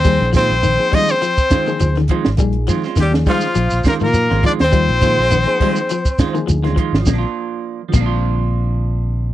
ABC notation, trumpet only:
X:1
M:4/4
L:1/16
Q:"Swing 16ths" 1/4=103
K:Bbmix
V:1 name="Trumpet"
c2 c4 e c6 z3 | z4 G2 F4 B B3 d c- | c12 z4 | z16 |]